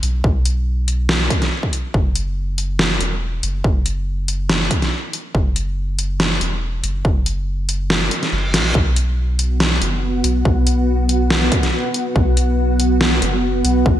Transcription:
0.03 0.23 B1 medium
0.03 closed hi-hat medium
0.24 1.29 B1 loud
0.24 kick loud
0.45 closed hi-hat medium
0.88 closed hi-hat medium
1.09 snare loud
1.30 kick loud
1.30 closed hi-hat medium
1.42 snare soft
1.42 closed hi-hat soft
1.63 kick medium
1.73 closed hi-hat medium
1.94 2.99 F#1 loud
1.94 kick loud
2.15 closed hi-hat medium
2.58 closed hi-hat medium
2.79 snare loud
3.00 3.42 E1 medium
3.00 closed hi-hat medium
3.43 3.63 F#1 medium
3.43 closed hi-hat medium
3.64 4.70 F#1 medium
3.64 kick loud
3.86 closed hi-hat medium
4.28 closed hi-hat medium
4.50 snare loud
4.71 kick loud
4.71 closed hi-hat medium
4.82 snare soft
4.82 closed hi-hat soft
5.13 closed hi-hat medium
5.35 6.40 F#1 loud
5.35 kick loud
5.56 closed hi-hat medium
5.99 closed hi-hat medium
6.20 snare loud
6.41 6.82 E1 medium
6.41 closed hi-hat medium
6.83 7.03 F#1 medium
6.83 closed hi-hat medium
7.05 8.10 F#1 loud
7.05 kick loud
7.26 closed hi-hat medium
7.69 closed hi-hat medium
7.90 snare loud
7.90 reverse cymbal medium
8.11 closed hi-hat medium
8.23 snare soft
8.23 closed hi-hat soft
8.32 8.55 F#1 loud
8.54 8.74 A#1 medium
8.54 snare medium
8.54 closed hi-hat medium
8.75 9.80 B1 loud
8.75 14.00 B3 medium
8.75 14.00 F#4 medium
8.75 kick loud
8.96 closed hi-hat medium
9.39 closed hi-hat medium
9.60 snare loud
9.81 10.23 F#1 medium
9.81 closed hi-hat medium
10.24 10.44 B1 medium
10.24 closed hi-hat medium
10.45 11.50 B1 loud
10.45 kick loud
10.67 closed hi-hat medium
11.09 closed hi-hat medium
11.30 snare loud
11.52 kick loud
11.52 closed hi-hat medium
11.63 snare soft
11.63 closed hi-hat soft
11.94 closed hi-hat medium
12.16 13.21 B1 loud
12.16 kick loud
12.37 closed hi-hat medium
12.80 closed hi-hat medium
13.01 snare loud
13.22 13.63 F#1 medium
13.22 closed hi-hat medium
13.64 13.84 B1 medium
13.64 closed hi-hat medium
13.86 14.00 B1 loud
13.86 kick loud

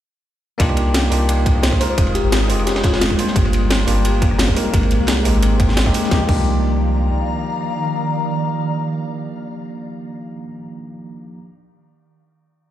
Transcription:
0.58 1.10 C2 loud
0.58 1.07 A#3 loud
0.58 1.08 D4 medium
0.58 1.08 D#4 medium
0.58 1.09 F4 medium
0.58 1.09 G4 loud
0.58 1.79 A#4 medium
0.58 1.79 F5 medium
0.58 1.79 D6 medium
0.58 3.33 D#6 medium
0.58 kick loud
0.58 closed hi-hat medium
0.58 ride medium
0.69 cross-stick soft
0.69 ride soft
0.77 closed hi-hat medium
0.77 ride medium
0.94 snare loud
0.94 closed hi-hat loud
0.94 ride medium
1.04 snare soft
1.10 1.79 C2 loud
1.10 1.78 A#3 medium
1.10 1.78 D4 medium
1.10 1.79 D#4 medium
1.10 1.79 F4 medium
1.10 1.79 G4 medium
1.10 open hi-hat medium
1.10 ride medium
1.29 closed hi-hat medium
1.29 ride medium
1.46 kick loud
1.46 closed hi-hat medium
1.46 ride medium
1.55 cross-stick soft
1.63 1.79 C5 medium
1.63 snare loud
1.63 closed hi-hat loud
1.63 ride medium
1.72 kick medium
1.72 cross-stick soft
1.72 snare soft
1.79 2.47 G#3 medium
1.79 3.34 G#3 medium
1.79 2.47 C4 medium
1.79 2.48 D#4 medium
1.79 2.48 F4 medium
1.79 2.48 A#4 medium
1.79 1.86 C5 medium
1.79 3.34 G5 medium
1.79 cross-stick soft
1.79 open hi-hat medium
1.79 ride medium
1.90 1.95 C5 medium
1.98 2.23 F1 loud
1.98 kick loud
1.98 closed hi-hat medium
1.98 ride medium
2.07 ride soft
2.15 2.36 G4 medium
2.15 closed hi-hat medium
2.15 ride medium
2.24 2.51 G#1 medium
2.32 snare loud
2.32 closed hi-hat medium
2.32 ride medium
2.42 snare soft
2.48 3.17 F1 loud
2.48 3.16 G#3 medium
2.48 3.16 C4 medium
2.48 3.17 D#4 medium
2.48 3.17 F4 medium
2.48 3.17 G4 medium
2.48 open hi-hat medium
2.48 ride medium
2.59 ride soft
2.67 2.82 G4 medium
2.67 cross-stick soft
2.67 snare medium
2.67 closed hi-hat medium
2.67 ride medium
2.76 snare loud
2.76 ride medium
2.83 2.91 F4 medium
2.83 kick loud
2.83 snare loud
2.83 closed hi-hat medium
2.83 ride medium
2.93 3.18 F4 medium
2.93 snare loud
2.93 snare soft
2.93 ride medium
3.01 snare loud
3.01 closed hi-hat medium
3.10 kick medium
3.17 3.84 G3 medium
3.17 3.85 A#3 medium
3.17 3.86 D4 medium
3.17 3.86 F4 medium
3.17 3.86 C5 medium
3.17 open hi-hat medium
3.17 ride medium
3.28 snare medium
3.36 3.86 G1 loud
3.36 4.72 G4 medium
3.36 4.72 F5 medium
3.36 4.72 A#5 medium
3.36 kick loud
3.36 closed hi-hat medium
3.36 ride medium
3.45 cross-stick soft
3.45 ride soft
3.53 closed hi-hat medium
3.53 ride medium
3.70 snare loud
3.70 closed hi-hat medium
3.70 ride loud
3.79 snare soft
3.86 4.55 G1 loud
3.86 4.54 G3 medium
3.86 4.54 A#3 medium
3.86 4.54 D4 medium
3.86 4.55 F4 medium
3.86 4.55 G4 medium
3.86 open hi-hat medium
3.86 ride medium
4.05 closed hi-hat medium
4.05 ride medium
4.22 kick loud
4.22 closed hi-hat medium
4.22 ride medium
4.31 cross-stick soft
4.39 snare loud
4.39 closed hi-hat medium
4.39 ride medium
4.48 kick medium
4.48 cross-stick soft
4.48 snare soft
4.55 5.22 G#3 medium
4.55 5.23 A#3 medium
4.55 5.23 C4 medium
4.55 5.24 D#4 medium
4.55 5.24 A#4 medium
4.55 cross-stick soft
4.55 open hi-hat medium
4.55 ride medium
4.73 4.99 G#1 loud
4.73 6.10 G#3 medium
4.73 6.10 G5 medium
4.73 6.10 C6 medium
4.73 kick loud
4.73 closed hi-hat medium
4.73 ride medium
4.83 ride soft
4.91 closed hi-hat medium
4.91 ride medium
5.00 5.27 C2 medium
5.07 snare loud
5.07 closed hi-hat medium
5.07 ride medium
5.17 snare soft
5.24 5.93 G#1 loud
5.24 5.84 G#3 medium
5.24 5.84 A#3 medium
5.24 5.84 C4 medium
5.24 5.85 D#4 medium
5.24 5.85 G4 medium
5.24 open hi-hat medium
5.24 ride medium
5.34 ride soft
5.43 cross-stick soft
5.43 closed hi-hat medium
5.43 ride medium
5.60 kick loud
5.60 closed hi-hat medium
5.60 ride medium
5.69 snare soft
5.77 snare loud
5.77 closed hi-hat medium
5.77 ride medium
5.85 6.10 G#3 medium
5.85 6.09 A#3 medium
5.85 6.11 C4 medium
5.85 6.11 D#4 medium
5.85 6.11 G4 medium
5.85 kick medium
5.85 snare medium
5.94 open hi-hat medium
5.94 ride medium
6.04 snare medium
6.09 6.22 C2 loud
6.09 9.63 D#3 medium
6.09 6.20 F3 medium
6.09 6.21 A#3 medium
6.09 6.22 D4 medium
6.09 6.22 D#4 medium
6.09 9.63 D5 medium
6.09 9.63 F5 medium
6.09 9.63 A#5 medium
6.09 kick loud
6.09 snare medium
6.14 6.23 G4 loud
6.26 7.11 C2 loud
6.26 10.32 F3 medium
6.26 10.33 A#3 medium
6.26 10.33 D4 medium
6.26 10.34 D#4 medium
6.26 kick loud
6.26 crash medium
6.31 10.35 G4 loud

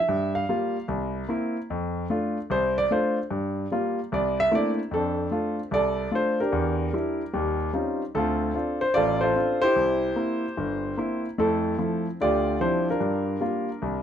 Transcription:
0.00 0.32 E5 medium
0.09 0.43 G2 medium
0.35 0.85 F5 medium
0.49 0.76 G3 medium
0.49 0.76 A#3 medium
0.49 0.76 F4 medium
0.88 1.23 C2 medium
1.29 1.56 A#3 medium
1.29 1.56 C4 soft
1.29 1.56 E4 medium
1.70 2.04 F2 medium
2.10 2.37 A3 medium
2.10 2.37 D4 soft
2.10 2.37 F4 medium
2.50 2.84 C2 medium
2.50 2.75 C5 medium
2.78 2.90 D5 loud
2.91 3.17 A3 medium
2.91 3.17 D4 medium
2.91 3.18 F4 medium
2.91 3.16 C5 medium
3.31 3.65 G2 medium
3.72 3.98 G3 medium
3.72 3.99 A#3 medium
3.72 3.98 F4 medium
4.12 4.46 C2 medium
4.12 4.37 D5 medium
4.40 4.52 E5 loud
4.51 4.78 A3 medium
4.51 4.78 A#3 medium
4.51 4.78 C4 medium
4.51 4.79 D4 medium
4.51 4.79 E4 medium
4.51 4.69 D5 medium
4.91 5.26 F2 medium
4.91 5.70 C4 medium
4.91 5.30 D4 medium
4.91 5.55 A4 medium
5.31 5.59 A3 soft
5.31 5.59 D4 soft
5.31 5.59 F4 medium
5.71 6.06 C2 medium
5.71 6.50 A4 medium
5.71 6.10 D5 loud
6.11 6.39 A3 soft
6.11 6.39 D4 soft
6.11 6.39 F4 medium
6.11 6.38 C5 medium
6.40 6.93 D4 medium
6.40 7.57 G4 medium
6.40 7.57 A#4 medium
6.52 6.87 E2 medium
6.93 7.21 G3 soft
6.93 7.21 D4 soft
6.93 7.21 E4 medium
7.33 7.68 D#2 medium
7.33 7.68 G3 medium
7.73 8.01 G3 soft
7.73 8.01 C4 soft
7.73 8.01 C#4 soft
7.73 8.01 D#4 soft
7.73 8.02 F4 medium
8.15 8.49 D2 medium
8.15 8.53 C4 medium
8.15 8.54 F4 medium
8.15 8.77 A4 medium
8.54 8.82 C4 medium
8.54 8.83 D4 soft
8.54 8.83 F4 medium
8.81 8.94 C5 medium
8.94 9.31 A1 medium
8.94 9.22 F4 medium
8.94 9.22 A4 medium
8.94 9.22 D5 loud
9.21 9.35 F4 medium
9.21 9.73 A4 medium
9.21 9.60 C5 medium
9.36 9.63 C4 medium
9.36 9.63 D4 soft
9.36 9.63 F4 medium
9.62 10.16 E4 medium
9.62 11.20 G4 medium
9.62 11.20 C5 loud
9.76 10.11 C2 medium
10.16 10.44 A#3 medium
10.16 10.44 C4 soft
10.16 10.45 E4 medium
10.57 10.92 G1 medium
10.97 11.25 A#3 soft
10.97 11.26 C4 soft
10.97 11.26 E4 medium
11.38 11.73 F2 medium
11.38 11.73 A3 medium
11.38 12.16 C4 medium
11.38 11.78 E4 medium
11.38 12.01 A4 medium
11.78 12.06 F3 medium
11.78 12.06 A3 soft
11.78 12.06 E4 medium
12.21 12.55 D2 medium
12.21 12.55 D3 medium
12.21 12.89 F4 medium
12.21 12.98 G4 medium
12.21 12.58 D5 loud
12.60 12.88 F3 medium
12.60 12.88 G3 soft
12.60 12.88 C4 soft
12.60 12.88 D4 soft
12.60 12.88 E4 medium
12.60 12.85 C5 medium
12.90 14.03 D4 medium
12.90 13.40 F4 medium
12.90 14.03 A#4 medium
13.00 13.35 G2 medium
13.41 13.68 G3 medium
13.41 13.68 A#3 soft
13.41 13.69 F4 medium
13.82 14.03 C2 medium

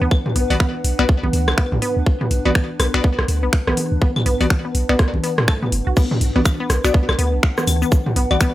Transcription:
0.00 0.07 D2 medium
0.00 0.08 B3 loud
0.00 5.95 D4 medium
0.00 5.97 B4 medium
0.00 5.97 F#5 medium
0.11 kick loud
0.11 claves medium
0.26 mid tom medium
0.36 0.45 B1 loud
0.36 0.42 B3 medium
0.36 open hi-hat medium
0.50 0.56 B1 loud
0.50 0.56 B3 medium
0.50 0.56 F#4 medium
0.50 0.56 D5 loud
0.50 open hi-hat soft
0.50 high conga medium
0.60 0.70 B3 loud
0.60 finger snap medium
0.60 kick loud
0.84 0.93 B1 medium
0.84 open hi-hat medium
0.99 1.05 B1 medium
0.99 1.03 B3 medium
0.99 1.05 B3 loud
0.99 1.05 F#4 medium
0.99 1.05 D5 loud
0.99 finger snap medium
1.09 kick loud
1.23 1.29 B1 loud
1.23 1.30 B3 loud
1.23 high conga medium
1.33 1.49 D2 medium
1.33 open hi-hat medium
1.48 1.54 B1 medium
1.48 cross-stick medium
1.48 claves medium
1.58 1.64 B3 medium
1.58 finger snap medium
1.58 kick loud
1.72 1.78 B1 loud
1.72 mid tom medium
1.82 1.92 B3 loud
1.82 open hi-hat medium
1.97 2.03 D2 loud
2.06 kick loud
2.21 2.25 B3 medium
2.21 mid tom medium
2.31 2.40 B1 loud
2.31 open hi-hat medium
2.45 2.51 B1 medium
2.45 2.51 B3 medium
2.45 2.52 B3 loud
2.45 2.51 F#4 medium
2.45 2.51 D5 medium
2.45 high conga medium
2.55 finger snap medium
2.55 kick loud
2.80 2.88 B1 loud
2.80 2.86 B3 medium
2.80 cross-stick medium
2.80 open hi-hat medium
2.80 claves medium
2.94 3.00 B1 medium
2.94 3.03 B3 loud
2.94 3.03 F#4 medium
2.94 3.03 D5 loud
2.94 finger snap medium
3.04 3.14 B3 medium
3.04 kick loud
3.19 3.25 B1 medium
3.19 cross-stick medium
3.28 3.44 D2 medium
3.28 open hi-hat medium
3.43 3.49 B1 loud
3.43 3.47 B3 medium
3.53 finger snap medium
3.53 kick loud
3.67 3.73 B1 loud
3.67 3.74 B3 loud
3.67 cross-stick medium
3.67 high conga soft
3.77 open hi-hat medium
3.77 high conga medium
3.92 3.98 D2 loud
4.02 4.08 B3 medium
4.02 kick loud
4.16 mid tom medium
4.16 claves medium
4.26 4.35 B1 loud
4.26 4.36 B3 loud
4.26 open hi-hat medium
4.41 4.47 B1 medium
4.41 4.46 B3 medium
4.41 4.46 F#4 medium
4.41 4.46 D5 medium
4.41 open hi-hat soft
4.41 high conga medium
4.50 finger snap medium
4.50 kick loud
4.65 4.69 B3 medium
4.75 4.84 B1 loud
4.75 open hi-hat medium
4.89 4.95 B1 medium
4.89 4.96 B3 loud
4.89 4.95 B3 medium
4.89 4.95 F#4 medium
4.89 4.95 D5 loud
4.89 finger snap medium
4.99 kick loud
4.99 cross-stick medium
4.99 open hi-hat soft
5.14 5.20 B1 medium
5.14 high conga medium
5.24 5.27 B3 medium
5.24 open hi-hat medium
5.38 cross-stick medium
5.38 mid tom medium
5.48 5.54 A3 medium
5.48 finger snap medium
5.48 kick loud
5.48 claves medium
5.62 5.65 B3 medium
5.62 mid tom medium
5.72 5.81 F#1 loud
5.72 open hi-hat medium
5.87 5.93 B1 loud
5.87 5.91 F#4 medium
5.97 6.06 B3 loud
5.97 8.54 D4 medium
5.97 kick loud
5.97 crash loud
5.97 shaker soft
6.11 mid tom medium
6.20 6.30 B1 loud
6.20 8.54 B4 loud
6.20 open hi-hat medium
6.29 8.54 F#5 medium
6.36 6.42 B1 loud
6.36 6.40 B3 medium
6.36 6.41 B3 medium
6.36 6.41 F#4 medium
6.36 6.41 D5 medium
6.36 high conga medium
6.45 finger snap medium
6.45 kick loud
6.45 claves medium
6.45 shaker soft
6.60 6.66 B3 loud
6.70 6.79 B1 loud
6.70 cross-stick medium
6.70 open hi-hat loud
6.70 shaker soft
6.84 6.90 B1 medium
6.84 6.93 B3 loud
6.84 6.93 F#4 medium
6.84 6.93 D5 loud
6.84 finger snap medium
6.84 shaker soft
6.94 7.01 B3 medium
6.94 kick loud
7.09 7.15 B1 medium
7.09 cross-stick medium
7.09 claves medium
7.19 7.35 D2 medium
7.19 7.28 B3 loud
7.19 open hi-hat medium
7.33 7.39 B1 loud
7.43 finger snap loud
7.43 kick loud
7.58 7.62 B3 medium
7.58 cross-stick medium
7.58 high conga medium
7.58 shaker soft
7.67 7.84 D2 medium
7.67 open hi-hat medium
7.67 high conga medium
7.67 claves medium
7.67 shaker soft
7.82 7.88 B3 loud
7.82 shaker soft
7.92 kick loud
7.92 shaker soft
8.06 mid tom medium
8.16 8.25 B1 loud
8.16 8.23 B3 medium
8.16 open hi-hat medium
8.31 8.37 B1 loud
8.31 8.36 B3 medium
8.31 8.36 F#4 medium
8.31 8.36 D5 loud
8.31 high conga medium
8.31 claves medium
8.41 8.50 B3 loud
8.41 finger snap loud
8.41 kick loud
8.41 shaker soft

